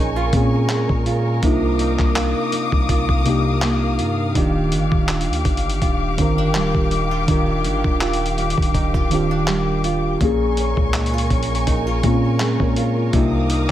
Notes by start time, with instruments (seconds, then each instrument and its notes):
Already playing: 808-style bass A#1, synth keys A#2 A#3 C#4 G#4, nylon-string guitar A#2 C#4 D#4, string section A#4 G#5 C#6
0.16 nylon-string guitar F4
0.32 synth keys A#2 A#3 C4, 808-style bass A#2, nylon-string guitar C#4, kick, closed hi-hat
0.36 synth keys G#4
0.41 synth keys C#4
0.69 nylon-string guitar G#3, clap, closed hi-hat
0.89 808-style bass A#2, kick
1.06 nylon-string guitar F4, closed hi-hat
1.42 808-style bass C2, synth keys C3 A#3 D4 D#4, nylon-string guitar C3, string section F5 D6 D#6, kick, closed hi-hat
1.46 synth keys F4
1.79 nylon-string guitar D#4, closed hi-hat
1.99 808-style bass C2, kick, clap
2.16 nylon-string guitar F4, clap, closed hi-hat
2.52 nylon-string guitar D#4, closed hi-hat
2.72 808-style bass C2, kick
2.89 nylon-string guitar F4, kick, closed hi-hat
3.09 kick
3.25 synth keys C3 A#3 D4 D#4, nylon-string guitar D#4, closed hi-hat
3.29 synth keys G4
3.62 nylon-string guitar A#3, clap, closed hi-hat
3.99 808-style bass G2, nylon-string guitar F4, closed hi-hat
4.34 808-style bass D#1, synth keys D#3 D4 F4, nylon-string guitar D#3, string section G4 D6, kick, closed hi-hat
4.38 synth keys G4
4.72 808-style bass G1, nylon-string guitar D4, closed hi-hat
4.92 808-style bass D#1, kick
5.08 nylon-string guitar F4, clap, closed hi-hat
5.21 closed hi-hat
5.28 808-style bass D#2
5.33 closed hi-hat
5.45 808-style bass G1, nylon-string guitar D4, kick, closed hi-hat
5.57 closed hi-hat
5.70 closed hi-hat
5.82 808-style bass D#1, nylon-string guitar F4, kick, closed hi-hat
6.17 808-style bass G1, synth keys D#3 D4 F4, nylon-string guitar C4, kick, closed hi-hat
6.21 synth keys A#4
6.38 nylon-string guitar D4
6.55 808-style bass D1, nylon-string guitar G3, clap, closed hi-hat
6.75 808-style bass D#1, kick
6.91 nylon-string guitar D#4, closed hi-hat
7.11 nylon-string guitar F4
7.27 808-style bass D#1, synth keys D#3 D4 F4, nylon-string guitar D#3, kick, closed hi-hat
7.31 synth keys A#4
7.64 808-style bass G1, nylon-string guitar D4, closed hi-hat
7.84 808-style bass D#1, kick
8.01 nylon-string guitar F4, clap, closed hi-hat
8.13 closed hi-hat
8.26 closed hi-hat
8.38 nylon-string guitar D4, closed hi-hat
8.50 closed hi-hat
8.58 808-style bass D#1, kick
8.62 closed hi-hat
8.74 nylon-string guitar D#4, kick, closed hi-hat
8.94 nylon-string guitar F4, kick
9.10 synth keys D#3 D4 F4, nylon-string guitar C4, closed hi-hat
9.14 synth keys G4
9.31 nylon-string guitar D4
9.48 nylon-string guitar G3, clap, closed hi-hat
9.84 nylon-string guitar F4, closed hi-hat
10.20 808-style bass A#1, synth keys A#2 A#3 C#4, nylon-string guitar A#2, string section A#4 G#5 C#6, kick, closed hi-hat
10.24 synth keys G#4
10.57 nylon-string guitar C#4, closed hi-hat
10.77 808-style bass C#2, kick
10.94 nylon-string guitar D#4, clap, closed hi-hat
11.06 closed hi-hat
11.13 nylon-string guitar F4
11.18 closed hi-hat
11.30 808-style bass A#1, nylon-string guitar C#4, kick, closed hi-hat
11.43 closed hi-hat
11.55 closed hi-hat
11.67 808-style bass A#1, nylon-string guitar D#4, kick, closed hi-hat
11.87 nylon-string guitar F4
12.03 synth keys A#2 A#3 C4, 808-style bass A#2, nylon-string guitar C#4, kick, closed hi-hat
12.07 synth keys F4
12.12 synth keys C#4
12.40 nylon-string guitar G#3, clap, closed hi-hat
12.60 808-style bass A#2, synth keys C#5, kick
12.76 nylon-string guitar F4, synth keys A#4, closed hi-hat
12.98 synth keys F4
13.12 808-style bass C2, synth keys C3 A#3 D4 D#4, nylon-string guitar C3, string section F5 D6 D#6, kick, closed hi-hat
13.16 synth keys F4
13.50 nylon-string guitar D#4, closed hi-hat